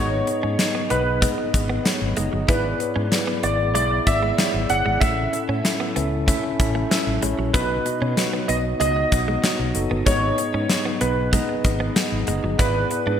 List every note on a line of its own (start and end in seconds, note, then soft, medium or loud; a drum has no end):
0.00 0.20 G#1 loud
0.00 0.87 G#2 medium
0.00 0.26 B3 medium
0.00 0.26 D#4 medium
0.00 0.26 G#4 medium
0.00 0.93 C#5 medium
0.00 0.26 D#5 medium
0.27 0.57 B3 medium
0.27 0.57 D#4 medium
0.27 0.57 G#4 medium
0.27 0.58 D#5 medium
0.27 muted clean electric guitar stroke soft
0.27 closed hi-hat medium
0.43 0.56 G#2 medium
0.43 0.54 C#4 medium
0.58 0.89 B3 medium
0.58 0.89 D#4 medium
0.58 0.89 G#4 medium
0.58 0.89 D#5 medium
0.58 muted clean electric guitar stroke soft
0.58 snare medium
0.58 closed hi-hat medium
0.75 0.85 B3 medium
0.90 1.27 B1 medium
0.90 1.20 B3 medium
0.90 1.01 B3 medium
0.90 1.20 D#4 medium
0.90 1.21 G#4 medium
0.90 2.13 B4 medium
0.90 1.21 D#5 medium
0.90 closed hi-hat medium
1.22 1.33 G#3 medium
1.22 1.52 B3 medium
1.22 1.52 D#4 medium
1.22 1.52 G#4 medium
1.22 1.52 D#5 medium
1.22 kick loud
1.22 closed hi-hat medium
1.38 muted clean electric guitar stroke soft
1.53 1.78 G#1 medium
1.53 1.83 B3 medium
1.53 1.83 D#4 medium
1.53 1.84 G#4 medium
1.53 1.84 D#5 medium
1.53 kick medium
1.53 closed hi-hat medium
1.70 1.80 B3 medium
1.84 2.15 B3 medium
1.84 2.15 D#4 medium
1.84 2.15 G#4 medium
1.84 2.15 C#5 medium
1.84 muted clean electric guitar stroke soft
1.84 snare loud
1.84 closed hi-hat medium
2.02 2.13 G#1 medium
2.17 2.29 F#1 medium
2.17 2.27 G#3 medium
2.17 2.47 B3 medium
2.17 2.47 D#4 medium
2.17 2.47 G#4 medium
2.17 2.47 D#5 medium
2.17 closed hi-hat medium
2.33 2.45 G1 medium
2.33 2.43 F#3 medium
2.48 2.72 G#1 medium
2.48 3.39 G#2 medium
2.48 2.78 B3 medium
2.48 2.59 E4 medium
2.48 2.78 E4 medium
2.48 2.79 G#4 medium
2.48 3.40 B4 medium
2.48 2.79 D5 loud
2.48 kick loud
2.48 closed hi-hat medium
2.80 3.10 B3 medium
2.80 3.10 E4 medium
2.80 3.10 G#4 medium
2.80 3.10 C#5 medium
2.80 muted clean electric guitar stroke soft
2.80 closed hi-hat medium
2.96 3.08 G#2 medium
2.96 3.06 C#4 medium
3.11 3.41 B3 medium
3.11 3.42 E4 medium
3.11 3.42 G#4 medium
3.11 3.42 D5 medium
3.11 muted clean electric guitar stroke soft
3.11 snare loud
3.11 closed hi-hat medium
3.27 3.38 B3 medium
3.43 3.75 G#1 medium
3.43 3.73 B3 medium
3.43 3.54 B3 medium
3.43 3.73 E4 medium
3.43 3.73 G#4 medium
3.43 3.73 D5 medium
3.43 closed hi-hat medium
3.74 3.99 B1 medium
3.74 3.85 G#3 medium
3.74 4.04 B3 medium
3.74 4.05 E4 medium
3.74 4.05 G#4 medium
3.74 4.07 D5 medium
3.74 4.05 E5 medium
3.74 closed hi-hat medium
3.91 muted clean electric guitar stroke soft
4.06 4.31 G#1 medium
4.06 4.36 B3 medium
4.06 4.36 E4 medium
4.06 4.37 G#4 medium
4.06 4.37 D5 medium
4.06 4.72 E5 loud
4.06 kick medium
4.06 closed hi-hat medium
4.23 4.33 G#3 medium
4.38 4.49 E3 medium
4.38 4.68 B3 medium
4.38 4.68 E4 medium
4.38 4.68 G#4 medium
4.38 4.68 C#5 medium
4.38 snare loud
4.38 closed hi-hat medium
4.54 4.66 G#1 medium
4.54 muted clean electric guitar stroke soft
4.69 4.82 G1 medium
4.69 4.99 B3 medium
4.69 4.99 E4 medium
4.69 5.00 G#4 medium
4.69 5.00 D5 medium
4.69 5.02 F#5 loud
4.69 closed hi-hat medium
4.86 4.98 G#1 medium
4.86 4.96 G#3 medium
5.00 5.25 A1 loud
5.00 5.92 A2 medium
5.00 5.12 A3 medium
5.00 5.31 C#4 medium
5.00 5.31 E4 medium
5.00 5.31 A4 medium
5.00 5.92 E5 medium
5.00 5.32 E5 loud
5.00 kick loud
5.00 closed hi-hat medium
5.33 5.63 C#4 medium
5.33 5.63 E4 medium
5.33 5.63 A4 medium
5.33 5.63 E5 medium
5.33 muted clean electric guitar stroke soft
5.33 closed hi-hat medium
5.49 5.61 A2 medium
5.49 5.59 C#4 medium
5.64 5.94 C#4 medium
5.64 5.94 E4 medium
5.64 5.94 A4 medium
5.64 5.95 E5 medium
5.64 muted clean electric guitar stroke soft
5.64 snare medium
5.64 closed hi-hat medium
5.80 5.91 B3 medium
5.95 6.32 C#2 medium
5.95 6.06 B3 medium
5.95 6.26 C#4 medium
5.95 6.26 E4 medium
5.95 6.26 A4 medium
5.95 6.26 E5 medium
5.95 closed hi-hat medium
6.27 6.38 A3 medium
6.27 6.57 C#4 loud
6.27 6.57 E4 medium
6.27 6.58 A4 medium
6.27 6.58 E5 loud
6.27 kick loud
6.27 closed hi-hat medium
6.43 muted clean electric guitar stroke soft
6.59 6.83 A1 medium
6.59 6.89 C#4 medium
6.59 6.89 E4 medium
6.59 6.89 A4 medium
6.59 6.89 E5 medium
6.59 kick medium
6.59 closed hi-hat medium
6.75 6.85 A3 medium
6.90 7.20 C#4 medium
6.90 7.20 E4 medium
6.90 7.21 A4 medium
6.90 7.21 E5 medium
6.90 muted clean electric guitar stroke soft
6.90 snare loud
6.90 closed hi-hat medium
7.07 7.19 A1 medium
7.22 7.34 A1 medium
7.22 7.33 G#3 medium
7.22 7.52 C#4 medium
7.22 7.52 E4 medium
7.22 7.52 A4 medium
7.22 7.52 C#5 medium
7.22 closed hi-hat medium
7.38 7.50 A#1 medium
7.38 7.49 F#3 medium
7.53 7.78 B1 loud
7.53 8.45 B2 medium
7.53 7.83 B3 medium
7.53 7.65 B3 medium
7.53 7.84 D#4 medium
7.53 7.84 F#4 medium
7.53 8.51 B4 medium
7.53 7.84 D#5 loud
7.53 kick loud
7.53 closed hi-hat medium
7.85 8.15 B3 medium
7.85 8.15 D#4 medium
7.85 8.16 F#4 medium
7.85 8.16 D#5 medium
7.85 muted clean electric guitar stroke soft
7.85 closed hi-hat medium
8.01 8.13 B2 medium
8.01 8.12 C#4 medium
8.17 8.47 B3 medium
8.17 8.47 D#4 medium
8.17 8.47 F#4 medium
8.17 8.47 C#5 medium
8.17 muted clean electric guitar stroke soft
8.17 snare loud
8.17 closed hi-hat medium
8.33 8.44 B3 medium
8.48 8.73 B1 medium
8.48 8.78 B3 medium
8.48 8.59 B3 medium
8.48 8.78 D#4 medium
8.48 8.78 F#4 medium
8.48 8.55 D#5 medium
8.48 8.79 D#5 medium
8.48 closed hi-hat medium
8.80 9.04 C#2 medium
8.80 8.91 G#3 medium
8.80 9.09 B3 medium
8.80 9.10 D#4 medium
8.80 9.10 F#4 medium
8.80 10.10 D#5 medium
8.80 9.10 D#5 loud
8.80 closed hi-hat medium
8.96 muted clean electric guitar stroke soft
9.11 9.36 B1 medium
9.11 9.41 B3 medium
9.11 9.41 D#4 medium
9.11 9.42 F#4 medium
9.11 kick medium
9.11 closed hi-hat medium
9.28 9.38 G#3 medium
9.42 9.54 F#3 medium
9.42 9.73 B3 medium
9.42 9.73 D#4 medium
9.42 9.73 F#4 medium
9.42 9.73 C#5 medium
9.42 snare loud
9.42 closed hi-hat medium
9.59 9.71 B1 medium
9.59 muted clean electric guitar stroke soft
9.74 9.87 F#1 medium
9.74 10.04 B3 medium
9.74 10.05 D#4 medium
9.74 10.05 F#4 medium
9.74 10.05 A4 medium
9.74 closed hi-hat medium
9.91 10.03 G1 medium
9.91 10.01 B3 medium
10.06 10.30 G#1 loud
10.06 10.97 G#2 medium
10.06 10.17 G#3 medium
10.06 10.36 B3 medium
10.06 10.36 D#4 medium
10.06 10.36 G#4 medium
10.06 10.97 C#5 medium
10.06 10.37 D#5 loud
10.06 kick loud
10.06 closed hi-hat medium
10.38 10.68 B3 medium
10.38 10.68 D#4 medium
10.38 10.68 G#4 medium
10.38 10.68 D#5 medium
10.38 muted clean electric guitar stroke soft
10.38 closed hi-hat medium
10.54 10.66 G#2 medium
10.54 10.64 C#4 medium
10.69 10.99 B3 medium
10.69 11.00 D#4 medium
10.69 11.00 G#4 medium
10.69 11.00 D#5 medium
10.69 muted clean electric guitar stroke soft
10.69 snare loud
10.69 closed hi-hat medium
10.85 10.96 B3 medium
11.00 11.37 B1 medium
11.00 11.31 B3 medium
11.00 11.12 B3 medium
11.00 11.31 D#4 medium
11.00 11.31 G#4 medium
11.00 12.23 B4 medium
11.00 11.31 D#5 medium
11.00 closed hi-hat medium
11.32 11.43 G#3 medium
11.32 11.62 B3 medium
11.32 11.62 D#4 medium
11.32 11.63 G#4 medium
11.32 11.63 D#5 loud
11.32 kick medium
11.32 closed hi-hat medium
11.49 muted clean electric guitar stroke soft
11.64 11.88 G#1 medium
11.64 11.94 B3 medium
11.64 11.94 D#4 medium
11.64 11.94 G#4 medium
11.64 11.94 D#5 medium
11.64 kick medium
11.64 closed hi-hat medium
11.80 11.91 B3 medium
11.95 12.26 B3 medium
11.95 12.26 D#4 medium
11.95 12.26 G#4 medium
11.95 12.26 D#5 medium
11.95 muted clean electric guitar stroke soft
11.95 snare loud
11.95 closed hi-hat medium
12.12 12.24 G#1 medium
12.27 12.40 F#1 medium
12.27 12.38 G#3 medium
12.27 12.57 B3 medium
12.27 12.57 D#4 medium
12.27 12.57 G#4 medium
12.27 12.57 D#5 medium
12.27 closed hi-hat medium
12.44 12.55 G1 medium
12.44 12.54 F#3 medium
12.58 12.83 G#1 medium
12.58 13.20 G#2 medium
12.58 12.88 B3 loud
12.58 12.89 E4 medium
12.58 12.70 E4 medium
12.58 12.89 G#4 medium
12.58 13.20 B4 medium
12.58 12.89 D5 loud
12.58 kick loud
12.58 closed hi-hat medium
12.90 13.20 B3 medium
12.90 13.20 E4 medium
12.90 13.20 G#4 medium
12.90 13.20 B4 medium
12.90 muted clean electric guitar stroke soft
12.90 closed hi-hat medium
13.07 13.18 G#2 medium
13.07 13.17 D4 medium